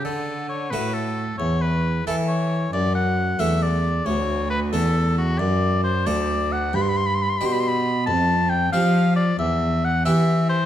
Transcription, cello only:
X:1
M:12/8
L:1/8
Q:3/8=90
K:D
V:1 name="Cello" clef=bass
D,3 A,,3 E,,3 E,3 | F,,3 E,,3 D,,3 E,,3 | [K:G] F,,3 D,,3 G,,3 B,,3 | =F,,3 =F,3 E,,3 E,3 |]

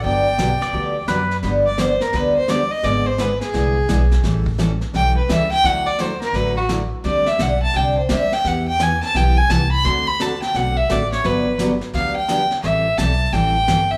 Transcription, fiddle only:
X:1
M:4/4
L:1/16
Q:"Swing" 1/4=171
K:G
V:1 name="Fiddle"
g12 z4 | z2 d2 c2 _B2 =B2 c2 d2 _e2 | d2 c2 B2 ^G8- G2 | z8 g2 B2 e2 g2 |
f2 d2 c2 _B2 =B2 F2 z4 | d2 e2 f2 a2 g2 c2 e2 g2 | f2 g2 _a2 =a2 g2 _a2 =a2 b2 | c'2 b2 a2 g2 f2 e2 d2 ^c2 |
B4 z4 =f2 g4- g z | e4 a4 g6 e2 |]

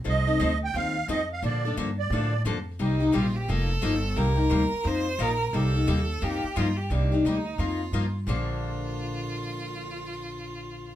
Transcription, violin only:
X:1
M:4/4
L:1/8
Q:"Swing" 1/4=175
K:Bb
V:1 name="Violin"
z8 | z8 | E2 F G A4 | B4 c2 B2 |
A4 G2 F G | D2 E2 F3 z | F8- | F8 |]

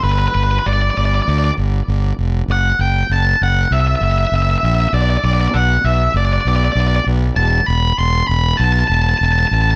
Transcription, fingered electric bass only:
X:1
M:4/4
L:1/8
Q:1/4=98
K:Em
V:1 name="Fingered electric bass" clef=bass
G,,, G,,, G,,, G,,, D,, G,,, G,,, =F,,, | F,,, F,,, F,,, F,,, C,, F,,, F,,, ^A,,, | B,,, B,,, B,,, B,,, F,,, B,,, B,,, B,,, | E,,, E,,, E,,, E,,, B,,, E,,, E,,, A,,, |]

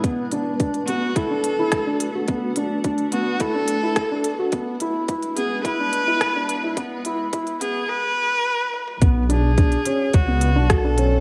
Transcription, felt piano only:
X:1
M:4/4
L:1/16
Q:1/4=107
K:Bdor
V:1 name="Felt piano"
B,2 D2 D2 B,2 E D2 E2 D2 F | B,2 D2 D2 B,2 E D2 E2 D2 F | B,2 E2 E2 B,2 E D2 E2 D2 E | B,2 E2 E2 B,2 z8 |
B,2 D2 D2 C2 z B,2 D F D C2 |]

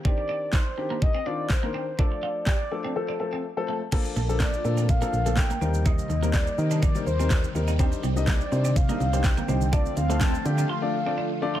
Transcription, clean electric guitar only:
X:1
M:4/4
L:1/16
Q:1/4=124
K:Eblyd
V:1 name="Clean electric guitar"
C z D z E z2 B, z C D z2 B, C z | D z F z G z2 C z D z C z2 A, z | B, z A, z B, z2 C z B, z A, z B, C z | E z2 B, C z2 D E z2 C D z2 E |
C z G, z B, z2 C z B, z G, z B, C z | D z2 A, C z2 D F z2 C D z2 F |]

